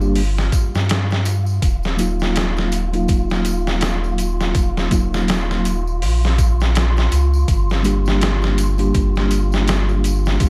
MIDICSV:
0, 0, Header, 1, 5, 480
1, 0, Start_track
1, 0, Tempo, 731707
1, 1069, Time_signature, 4, 2, 24, 8
1, 6881, End_track
2, 0, Start_track
2, 0, Title_t, "Synth texture"
2, 0, Program_c, 0, 99
2, 0, Note_on_c, 0, 65, 74
2, 6881, Note_off_c, 0, 65, 0
2, 6881, End_track
3, 0, Start_track
3, 0, Title_t, "Tine electric piano"
3, 0, Program_c, 1, 4
3, 1, Note_on_c, 1, 55, 67
3, 3, Note_on_c, 1, 58, 60
3, 5, Note_on_c, 1, 62, 62
3, 8, Note_on_c, 1, 67, 75
3, 130, Note_off_c, 1, 55, 0
3, 131, Note_off_c, 1, 58, 0
3, 132, Note_off_c, 1, 62, 0
3, 134, Note_off_c, 1, 67, 0
3, 1291, Note_on_c, 1, 54, 67
3, 1298, Note_on_c, 1, 58, 63
3, 1304, Note_on_c, 1, 63, 63
3, 1311, Note_on_c, 1, 65, 78
3, 1885, Note_off_c, 1, 54, 0
3, 1888, Note_off_c, 1, 58, 0
3, 1891, Note_off_c, 1, 63, 0
3, 1895, Note_off_c, 1, 65, 0
3, 1915, Note_on_c, 1, 54, 65
3, 1921, Note_on_c, 1, 58, 62
3, 1928, Note_on_c, 1, 63, 63
3, 1936, Note_on_c, 1, 65, 77
3, 3198, Note_off_c, 1, 54, 0
3, 3201, Note_off_c, 1, 58, 0
3, 3204, Note_off_c, 1, 63, 0
3, 3208, Note_off_c, 1, 65, 0
3, 3214, Note_on_c, 1, 54, 77
3, 3221, Note_on_c, 1, 58, 72
3, 3227, Note_on_c, 1, 63, 68
3, 3234, Note_on_c, 1, 65, 83
3, 3806, Note_off_c, 1, 54, 0
3, 3810, Note_off_c, 1, 58, 0
3, 3813, Note_off_c, 1, 63, 0
3, 3817, Note_off_c, 1, 65, 0
3, 5132, Note_on_c, 1, 55, 67
3, 5138, Note_on_c, 1, 58, 63
3, 5147, Note_on_c, 1, 62, 62
3, 5153, Note_on_c, 1, 67, 77
3, 5726, Note_off_c, 1, 55, 0
3, 5728, Note_off_c, 1, 58, 0
3, 5733, Note_off_c, 1, 62, 0
3, 5736, Note_off_c, 1, 67, 0
3, 5753, Note_on_c, 1, 55, 64
3, 5760, Note_on_c, 1, 58, 65
3, 5768, Note_on_c, 1, 62, 63
3, 5773, Note_on_c, 1, 67, 74
3, 6881, Note_off_c, 1, 55, 0
3, 6881, Note_off_c, 1, 58, 0
3, 6881, Note_off_c, 1, 62, 0
3, 6881, Note_off_c, 1, 67, 0
3, 6881, End_track
4, 0, Start_track
4, 0, Title_t, "Sub bass"
4, 0, Program_c, 2, 38
4, 0, Note_on_c, 2, 31, 93
4, 326, Note_off_c, 2, 31, 0
4, 486, Note_on_c, 2, 43, 75
4, 1048, Note_off_c, 2, 43, 0
4, 1064, Note_on_c, 2, 27, 93
4, 2007, Note_off_c, 2, 27, 0
4, 2026, Note_on_c, 2, 27, 81
4, 2968, Note_off_c, 2, 27, 0
4, 2983, Note_on_c, 2, 27, 91
4, 3201, Note_off_c, 2, 27, 0
4, 3224, Note_on_c, 2, 27, 94
4, 3943, Note_on_c, 2, 34, 88
4, 3953, Note_off_c, 2, 27, 0
4, 4646, Note_off_c, 2, 34, 0
4, 4665, Note_on_c, 2, 37, 70
4, 4882, Note_off_c, 2, 37, 0
4, 4906, Note_on_c, 2, 31, 92
4, 5848, Note_off_c, 2, 31, 0
4, 5867, Note_on_c, 2, 31, 83
4, 6808, Note_off_c, 2, 31, 0
4, 6826, Note_on_c, 2, 31, 86
4, 6881, Note_off_c, 2, 31, 0
4, 6881, End_track
5, 0, Start_track
5, 0, Title_t, "Drums"
5, 9, Note_on_c, 9, 54, 34
5, 74, Note_off_c, 9, 54, 0
5, 102, Note_on_c, 9, 46, 65
5, 102, Note_on_c, 9, 54, 43
5, 167, Note_off_c, 9, 46, 0
5, 168, Note_off_c, 9, 54, 0
5, 244, Note_on_c, 9, 54, 24
5, 252, Note_on_c, 9, 38, 44
5, 310, Note_off_c, 9, 54, 0
5, 318, Note_off_c, 9, 38, 0
5, 343, Note_on_c, 9, 42, 61
5, 344, Note_on_c, 9, 36, 82
5, 348, Note_on_c, 9, 54, 83
5, 409, Note_off_c, 9, 36, 0
5, 409, Note_off_c, 9, 42, 0
5, 414, Note_off_c, 9, 54, 0
5, 490, Note_on_c, 9, 54, 37
5, 495, Note_on_c, 9, 38, 37
5, 555, Note_off_c, 9, 54, 0
5, 561, Note_off_c, 9, 38, 0
5, 586, Note_on_c, 9, 42, 75
5, 586, Note_on_c, 9, 54, 50
5, 596, Note_on_c, 9, 38, 96
5, 651, Note_off_c, 9, 54, 0
5, 652, Note_off_c, 9, 42, 0
5, 662, Note_off_c, 9, 38, 0
5, 724, Note_on_c, 9, 54, 21
5, 737, Note_on_c, 9, 38, 40
5, 790, Note_off_c, 9, 54, 0
5, 802, Note_off_c, 9, 38, 0
5, 822, Note_on_c, 9, 54, 90
5, 826, Note_on_c, 9, 42, 64
5, 888, Note_off_c, 9, 54, 0
5, 892, Note_off_c, 9, 42, 0
5, 960, Note_on_c, 9, 54, 38
5, 1026, Note_off_c, 9, 54, 0
5, 1064, Note_on_c, 9, 36, 91
5, 1065, Note_on_c, 9, 42, 77
5, 1066, Note_on_c, 9, 54, 51
5, 1129, Note_off_c, 9, 36, 0
5, 1130, Note_off_c, 9, 42, 0
5, 1132, Note_off_c, 9, 54, 0
5, 1201, Note_on_c, 9, 54, 23
5, 1215, Note_on_c, 9, 38, 38
5, 1267, Note_off_c, 9, 54, 0
5, 1280, Note_off_c, 9, 38, 0
5, 1302, Note_on_c, 9, 54, 87
5, 1306, Note_on_c, 9, 42, 57
5, 1368, Note_off_c, 9, 54, 0
5, 1371, Note_off_c, 9, 42, 0
5, 1440, Note_on_c, 9, 54, 30
5, 1455, Note_on_c, 9, 38, 39
5, 1506, Note_off_c, 9, 54, 0
5, 1521, Note_off_c, 9, 38, 0
5, 1545, Note_on_c, 9, 54, 41
5, 1546, Note_on_c, 9, 42, 82
5, 1556, Note_on_c, 9, 38, 101
5, 1611, Note_off_c, 9, 54, 0
5, 1612, Note_off_c, 9, 42, 0
5, 1622, Note_off_c, 9, 38, 0
5, 1684, Note_on_c, 9, 54, 22
5, 1696, Note_on_c, 9, 38, 44
5, 1750, Note_off_c, 9, 54, 0
5, 1761, Note_off_c, 9, 38, 0
5, 1783, Note_on_c, 9, 54, 82
5, 1788, Note_on_c, 9, 42, 62
5, 1849, Note_off_c, 9, 54, 0
5, 1853, Note_off_c, 9, 42, 0
5, 1924, Note_on_c, 9, 54, 38
5, 1926, Note_on_c, 9, 42, 38
5, 1989, Note_off_c, 9, 54, 0
5, 1992, Note_off_c, 9, 42, 0
5, 2022, Note_on_c, 9, 54, 48
5, 2025, Note_on_c, 9, 36, 96
5, 2027, Note_on_c, 9, 42, 71
5, 2087, Note_off_c, 9, 54, 0
5, 2090, Note_off_c, 9, 36, 0
5, 2093, Note_off_c, 9, 42, 0
5, 2165, Note_on_c, 9, 54, 22
5, 2174, Note_on_c, 9, 38, 43
5, 2230, Note_off_c, 9, 54, 0
5, 2239, Note_off_c, 9, 38, 0
5, 2261, Note_on_c, 9, 42, 57
5, 2267, Note_on_c, 9, 54, 86
5, 2327, Note_off_c, 9, 42, 0
5, 2333, Note_off_c, 9, 54, 0
5, 2407, Note_on_c, 9, 54, 31
5, 2409, Note_on_c, 9, 38, 41
5, 2472, Note_off_c, 9, 54, 0
5, 2475, Note_off_c, 9, 38, 0
5, 2499, Note_on_c, 9, 42, 73
5, 2508, Note_on_c, 9, 54, 50
5, 2509, Note_on_c, 9, 38, 92
5, 2565, Note_off_c, 9, 42, 0
5, 2574, Note_off_c, 9, 54, 0
5, 2575, Note_off_c, 9, 38, 0
5, 2649, Note_on_c, 9, 54, 24
5, 2715, Note_off_c, 9, 54, 0
5, 2743, Note_on_c, 9, 42, 60
5, 2751, Note_on_c, 9, 54, 88
5, 2809, Note_off_c, 9, 42, 0
5, 2817, Note_off_c, 9, 54, 0
5, 2890, Note_on_c, 9, 38, 36
5, 2890, Note_on_c, 9, 54, 37
5, 2956, Note_off_c, 9, 38, 0
5, 2956, Note_off_c, 9, 54, 0
5, 2983, Note_on_c, 9, 36, 87
5, 2983, Note_on_c, 9, 42, 72
5, 2989, Note_on_c, 9, 54, 52
5, 3048, Note_off_c, 9, 42, 0
5, 3049, Note_off_c, 9, 36, 0
5, 3054, Note_off_c, 9, 54, 0
5, 3130, Note_on_c, 9, 54, 25
5, 3131, Note_on_c, 9, 38, 37
5, 3196, Note_off_c, 9, 54, 0
5, 3197, Note_off_c, 9, 38, 0
5, 3221, Note_on_c, 9, 42, 63
5, 3224, Note_on_c, 9, 36, 80
5, 3228, Note_on_c, 9, 54, 82
5, 3287, Note_off_c, 9, 42, 0
5, 3289, Note_off_c, 9, 36, 0
5, 3293, Note_off_c, 9, 54, 0
5, 3371, Note_on_c, 9, 54, 36
5, 3374, Note_on_c, 9, 38, 47
5, 3437, Note_off_c, 9, 54, 0
5, 3439, Note_off_c, 9, 38, 0
5, 3465, Note_on_c, 9, 42, 76
5, 3474, Note_on_c, 9, 54, 44
5, 3475, Note_on_c, 9, 38, 107
5, 3531, Note_off_c, 9, 42, 0
5, 3540, Note_off_c, 9, 54, 0
5, 3541, Note_off_c, 9, 38, 0
5, 3613, Note_on_c, 9, 54, 21
5, 3615, Note_on_c, 9, 38, 44
5, 3679, Note_off_c, 9, 54, 0
5, 3680, Note_off_c, 9, 38, 0
5, 3707, Note_on_c, 9, 54, 85
5, 3708, Note_on_c, 9, 42, 63
5, 3773, Note_off_c, 9, 54, 0
5, 3774, Note_off_c, 9, 42, 0
5, 3853, Note_on_c, 9, 54, 39
5, 3919, Note_off_c, 9, 54, 0
5, 3950, Note_on_c, 9, 46, 66
5, 3955, Note_on_c, 9, 54, 45
5, 4015, Note_off_c, 9, 46, 0
5, 4020, Note_off_c, 9, 54, 0
5, 4088, Note_on_c, 9, 54, 23
5, 4099, Note_on_c, 9, 38, 41
5, 4153, Note_off_c, 9, 54, 0
5, 4165, Note_off_c, 9, 38, 0
5, 4187, Note_on_c, 9, 36, 81
5, 4188, Note_on_c, 9, 42, 59
5, 4189, Note_on_c, 9, 54, 78
5, 4253, Note_off_c, 9, 36, 0
5, 4254, Note_off_c, 9, 42, 0
5, 4255, Note_off_c, 9, 54, 0
5, 4331, Note_on_c, 9, 54, 36
5, 4340, Note_on_c, 9, 38, 39
5, 4397, Note_off_c, 9, 54, 0
5, 4406, Note_off_c, 9, 38, 0
5, 4430, Note_on_c, 9, 42, 72
5, 4432, Note_on_c, 9, 54, 45
5, 4440, Note_on_c, 9, 38, 94
5, 4496, Note_off_c, 9, 42, 0
5, 4498, Note_off_c, 9, 54, 0
5, 4506, Note_off_c, 9, 38, 0
5, 4570, Note_on_c, 9, 54, 22
5, 4580, Note_on_c, 9, 38, 40
5, 4636, Note_off_c, 9, 54, 0
5, 4645, Note_off_c, 9, 38, 0
5, 4669, Note_on_c, 9, 54, 71
5, 4671, Note_on_c, 9, 42, 60
5, 4734, Note_off_c, 9, 54, 0
5, 4737, Note_off_c, 9, 42, 0
5, 4811, Note_on_c, 9, 54, 41
5, 4877, Note_off_c, 9, 54, 0
5, 4907, Note_on_c, 9, 36, 92
5, 4907, Note_on_c, 9, 54, 45
5, 4908, Note_on_c, 9, 42, 69
5, 4972, Note_off_c, 9, 36, 0
5, 4972, Note_off_c, 9, 54, 0
5, 4974, Note_off_c, 9, 42, 0
5, 5049, Note_on_c, 9, 54, 22
5, 5059, Note_on_c, 9, 38, 40
5, 5114, Note_off_c, 9, 54, 0
5, 5125, Note_off_c, 9, 38, 0
5, 5145, Note_on_c, 9, 54, 79
5, 5149, Note_on_c, 9, 42, 60
5, 5211, Note_off_c, 9, 54, 0
5, 5215, Note_off_c, 9, 42, 0
5, 5285, Note_on_c, 9, 54, 32
5, 5299, Note_on_c, 9, 38, 39
5, 5350, Note_off_c, 9, 54, 0
5, 5365, Note_off_c, 9, 38, 0
5, 5388, Note_on_c, 9, 42, 79
5, 5390, Note_on_c, 9, 54, 42
5, 5398, Note_on_c, 9, 38, 101
5, 5454, Note_off_c, 9, 42, 0
5, 5455, Note_off_c, 9, 54, 0
5, 5464, Note_off_c, 9, 38, 0
5, 5523, Note_on_c, 9, 54, 21
5, 5536, Note_on_c, 9, 38, 44
5, 5588, Note_off_c, 9, 54, 0
5, 5602, Note_off_c, 9, 38, 0
5, 5628, Note_on_c, 9, 42, 62
5, 5630, Note_on_c, 9, 54, 88
5, 5694, Note_off_c, 9, 42, 0
5, 5695, Note_off_c, 9, 54, 0
5, 5760, Note_on_c, 9, 54, 36
5, 5767, Note_on_c, 9, 42, 39
5, 5826, Note_off_c, 9, 54, 0
5, 5833, Note_off_c, 9, 42, 0
5, 5866, Note_on_c, 9, 54, 47
5, 5867, Note_on_c, 9, 36, 95
5, 5869, Note_on_c, 9, 42, 76
5, 5932, Note_off_c, 9, 54, 0
5, 5933, Note_off_c, 9, 36, 0
5, 5935, Note_off_c, 9, 42, 0
5, 6006, Note_on_c, 9, 54, 21
5, 6017, Note_on_c, 9, 38, 44
5, 6071, Note_off_c, 9, 54, 0
5, 6083, Note_off_c, 9, 38, 0
5, 6105, Note_on_c, 9, 54, 79
5, 6107, Note_on_c, 9, 42, 58
5, 6170, Note_off_c, 9, 54, 0
5, 6172, Note_off_c, 9, 42, 0
5, 6245, Note_on_c, 9, 54, 38
5, 6257, Note_on_c, 9, 38, 42
5, 6311, Note_off_c, 9, 54, 0
5, 6323, Note_off_c, 9, 38, 0
5, 6347, Note_on_c, 9, 42, 72
5, 6350, Note_on_c, 9, 54, 50
5, 6357, Note_on_c, 9, 38, 98
5, 6413, Note_off_c, 9, 42, 0
5, 6416, Note_off_c, 9, 54, 0
5, 6422, Note_off_c, 9, 38, 0
5, 6487, Note_on_c, 9, 54, 23
5, 6552, Note_off_c, 9, 54, 0
5, 6587, Note_on_c, 9, 42, 60
5, 6594, Note_on_c, 9, 54, 84
5, 6652, Note_off_c, 9, 42, 0
5, 6660, Note_off_c, 9, 54, 0
5, 6727, Note_on_c, 9, 54, 38
5, 6737, Note_on_c, 9, 38, 36
5, 6793, Note_off_c, 9, 54, 0
5, 6802, Note_off_c, 9, 38, 0
5, 6823, Note_on_c, 9, 42, 73
5, 6827, Note_on_c, 9, 36, 92
5, 6829, Note_on_c, 9, 54, 48
5, 6881, Note_off_c, 9, 36, 0
5, 6881, Note_off_c, 9, 42, 0
5, 6881, Note_off_c, 9, 54, 0
5, 6881, End_track
0, 0, End_of_file